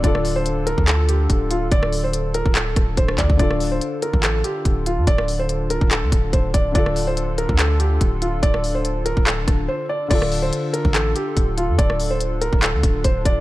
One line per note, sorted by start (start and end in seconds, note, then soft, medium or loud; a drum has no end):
0.00 0.75 D1 loud
0.00 3.34 D3 medium
0.00 3.36 D3 medium
0.00 3.36 D4 medium
0.00 3.35 D4 medium
0.00 3.35 F4 medium
0.00 6.71 A4 medium
0.00 0.34 D5 loud
0.00 kick loud
0.00 closed hi-hat medium
0.05 3.36 F4 medium
0.05 3.37 A4 medium
0.15 cross-stick medium
0.25 open hi-hat medium
0.36 0.65 C5 medium
0.46 closed hi-hat medium
0.67 0.83 A#4 medium
0.67 closed hi-hat medium
0.78 1.28 D2 loud
0.78 kick medium
0.88 1.04 A4 medium
0.88 clap loud
0.88 closed hi-hat medium
1.08 1.48 G4 medium
1.08 closed hi-hat medium
1.30 1.70 D1 loud
1.30 kick medium
1.30 closed hi-hat medium
1.51 1.67 F4 medium
1.51 closed hi-hat medium
1.72 2.43 D1 loud
1.72 2.02 D5 loud
1.72 kick loud
1.72 closed hi-hat medium
1.83 cross-stick loud
1.93 open hi-hat medium
2.04 2.33 C5 medium
2.13 closed hi-hat medium
2.34 2.51 A#4 medium
2.34 closed hi-hat medium
2.46 2.75 D1 loud
2.46 kick medium
2.55 2.95 A4 medium
2.55 clap loud
2.55 closed hi-hat medium
2.76 2.97 D1 loud
2.76 kick loud
2.76 cross-stick medium
2.76 closed hi-hat medium
2.97 3.18 D1 loud
2.97 3.14 C5 medium
2.97 kick medium
2.97 closed hi-hat medium
3.08 cross-stick loud
3.18 3.39 D2 loud
3.18 3.35 D5 medium
3.18 kick medium
3.18 clap medium
3.18 closed hi-hat medium
3.30 kick loud
3.37 3.80 D1 loud
3.37 6.70 D3 medium
3.37 10.07 D3 medium
3.37 6.71 D4 medium
3.37 10.07 D4 medium
3.37 6.72 F4 medium
3.37 3.70 D5 medium
3.37 kick loud
3.37 closed hi-hat medium
3.41 6.72 F4 medium
3.41 6.73 A4 medium
3.51 cross-stick medium
3.60 open hi-hat medium
3.72 4.01 C5 medium
3.81 closed hi-hat medium
4.02 4.19 A#4 medium
4.02 closed hi-hat medium
4.13 4.43 A1 loud
4.13 kick medium
4.23 4.40 A4 medium
4.23 clap loud
4.23 closed hi-hat medium
4.44 4.84 G4 medium
4.44 closed hi-hat medium
4.65 4.99 D1 loud
4.65 kick medium
4.65 closed hi-hat medium
4.86 5.03 F4 medium
4.86 closed hi-hat medium
4.97 5.07 F2 loud
5.07 5.78 D1 loud
5.07 5.37 D5 medium
5.07 kick loud
5.07 closed hi-hat medium
5.18 cross-stick loud
5.28 open hi-hat medium
5.39 5.68 C5 medium
5.49 closed hi-hat medium
5.70 5.87 A#4 medium
5.70 closed hi-hat medium
5.81 6.04 D1 loud
5.81 kick medium
5.91 6.31 A4 medium
5.91 clap loud
5.91 closed hi-hat medium
6.02 6.12 D2 loud
6.12 6.32 D1 loud
6.12 kick loud
6.12 closed hi-hat medium
6.33 6.53 D1 loud
6.33 6.50 C5 medium
6.33 kick medium
6.33 closed hi-hat medium
6.54 6.74 D1 loud
6.54 6.71 D5 medium
6.54 kick loud
6.54 closed hi-hat medium
6.72 7.46 D1 loud
6.72 10.05 D3 medium
6.72 10.06 D4 medium
6.72 10.08 F4 medium
6.72 10.08 A4 medium
6.72 7.05 D5 loud
6.72 kick loud
6.72 closed hi-hat medium
6.76 10.07 F4 medium
6.76 10.08 A4 medium
6.86 cross-stick medium
6.96 open hi-hat medium
7.07 7.36 C5 medium
7.17 closed hi-hat medium
7.38 7.55 A#4 medium
7.38 closed hi-hat medium
7.49 7.99 D2 loud
7.49 kick medium
7.59 7.76 A4 medium
7.59 clap loud
7.59 closed hi-hat medium
7.80 8.19 G4 medium
7.80 closed hi-hat medium
8.01 8.41 D1 loud
8.01 kick medium
8.01 closed hi-hat medium
8.22 8.38 F4 medium
8.22 closed hi-hat medium
8.43 9.14 D1 loud
8.43 8.73 D5 loud
8.43 kick loud
8.43 closed hi-hat medium
8.54 cross-stick medium
8.64 open hi-hat medium
8.75 9.04 C5 medium
8.85 closed hi-hat medium
9.06 9.22 A#4 medium
9.06 closed hi-hat medium
9.17 9.47 D1 loud
9.17 kick medium
9.27 9.66 A4 medium
9.27 clap loud
9.27 closed hi-hat medium
9.48 9.68 D1 loud
9.48 kick loud
9.48 cross-stick medium
9.48 closed hi-hat medium
9.68 9.85 C5 medium
9.89 10.06 D5 medium
10.08 10.51 D1 loud
10.08 13.40 D3 medium
10.08 13.40 D4 medium
10.08 13.40 F4 medium
10.08 13.40 A4 medium
10.08 10.41 D5 loud
10.08 kick loud
10.08 closed hi-hat medium
10.08 crash loud
10.13 13.40 F4 medium
10.13 13.40 A4 medium
10.22 cross-stick loud
10.32 open hi-hat medium
10.42 10.72 C5 medium
10.53 closed hi-hat medium
10.73 10.90 A#4 medium
10.73 closed hi-hat medium
10.85 11.14 A1 loud
10.85 kick medium
10.95 11.11 A4 medium
10.95 clap loud
10.95 closed hi-hat medium
11.16 11.55 G4 medium
11.16 closed hi-hat medium
11.37 11.70 D1 loud
11.37 kick medium
11.37 closed hi-hat medium
11.58 11.74 F4 medium
11.58 closed hi-hat medium
11.69 11.78 F2 loud
11.78 12.50 D1 loud
11.78 12.09 D5 medium
11.78 kick loud
11.78 closed hi-hat medium
11.90 cross-stick medium
12.00 open hi-hat medium
12.10 12.40 C5 medium
12.21 closed hi-hat medium
12.41 12.58 A#4 medium
12.41 closed hi-hat medium
12.53 12.75 D1 loud
12.53 kick medium
12.62 13.02 A4 medium
12.62 clap loud
12.62 closed hi-hat medium
12.74 12.83 D2 loud
12.83 13.04 D1 loud
12.83 kick loud
12.83 closed hi-hat medium
13.04 13.25 D1 loud
13.04 13.21 C5 medium
13.04 kick medium
13.04 closed hi-hat medium
13.25 13.40 D1 loud
13.25 13.40 D5 medium
13.25 kick loud
13.25 closed hi-hat medium